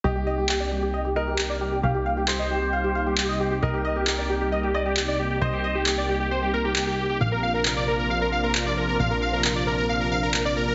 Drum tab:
CP |--x---x-|--x---x-|--x---x-|--x---x-|

CP |--x---x-|--x---x-|